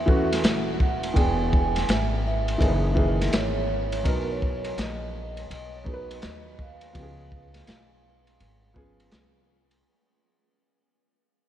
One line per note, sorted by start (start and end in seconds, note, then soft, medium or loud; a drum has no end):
0.00 0.40 E2 medium
0.00 0.78 E5 loud
0.06 0.85 E3 medium
0.06 0.86 A3 medium
0.06 0.86 C#4 medium
0.06 0.86 F#4 medium
0.06 kick medium
0.33 snare soft
0.33 ride medium
0.43 1.12 D#1 medium
0.43 snare loud
0.43 hi-hat pedal soft
0.43 ride medium
0.80 1.11 F#5 medium
0.80 kick medium
1.03 ride medium
1.14 1.85 E1 medium
1.14 2.19 E3 medium
1.14 2.20 B3 medium
1.14 2.20 D4 medium
1.14 2.21 G#4 medium
1.14 1.18 G5 medium
1.14 kick loud
1.14 ride medium
1.19 1.92 G#5 loud
1.53 kick loud
1.76 snare soft
1.76 ride medium
1.89 2.57 G#1 medium
1.89 2.23 E5 medium
1.89 snare loud
1.89 hi-hat pedal soft
1.89 ride medium
2.27 3.38 E5 loud
2.48 ride medium
2.58 3.30 F#1 loud
2.58 2.91 E3 medium
2.58 2.91 A#3 medium
2.58 2.91 D#4 medium
2.58 2.92 G#4 medium
2.58 kick loud
2.58 ride medium
2.95 3.75 D#3 medium
2.95 3.74 E3 medium
2.95 3.75 A#3 medium
2.95 3.76 G#4 medium
2.95 kick loud
3.21 snare soft
3.21 ride medium
3.33 4.02 G#1 medium
3.33 4.03 C#5 loud
3.33 snare loud
3.33 hi-hat pedal medium
3.33 ride medium
3.92 ride medium
4.03 4.74 B1 loud
4.03 5.09 F#3 medium
4.03 5.09 B3 medium
4.03 5.10 D#4 medium
4.03 5.10 A#4 medium
4.03 kick loud
4.03 ride medium
4.08 4.29 A#4 loud
4.32 4.81 C#5 loud
4.42 kick medium
4.64 ride medium
4.78 5.47 A#1 loud
4.78 snare loud
4.78 hi-hat pedal soft
4.78 ride medium
5.37 ride medium
5.50 6.19 B1 medium
5.50 5.76 D#5 loud
5.50 ride medium
5.77 5.87 C#5 medium
5.84 6.63 F#3 medium
5.84 6.64 B3 medium
5.84 6.64 D#4 medium
5.84 5.95 G#4 medium
5.84 kick loud
5.90 6.25 B4 medium
5.90 6.68 B4 medium
6.11 ride medium
6.22 6.92 D#2 medium
6.22 snare loud
6.22 hi-hat pedal soft
6.22 ride medium
6.26 6.58 D#5 medium
6.59 9.09 F5 medium
6.59 kick loud
6.81 ride medium
6.93 7.64 C#2 loud
6.93 7.98 F3 medium
6.93 7.98 B3 medium
6.93 7.99 C#4 medium
6.93 7.04 G4 medium
6.93 kick loud
6.93 ride medium
7.02 8.03 G#4 medium
7.32 kick medium
7.54 snare soft
7.54 ride medium
7.67 8.36 B1 medium
7.67 snare medium
7.67 hi-hat pedal medium
7.67 ride medium
8.27 ride medium
8.40 9.09 G#1 medium
8.40 ride medium
8.74 9.53 F3 medium
8.74 9.53 B3 medium
8.74 9.54 C#4 medium
8.74 9.55 G#4 loud
8.74 kick medium
9.00 ride medium
9.11 9.81 C2 medium
9.11 snare loud
9.11 hi-hat pedal soft
9.11 ride medium
9.71 ride medium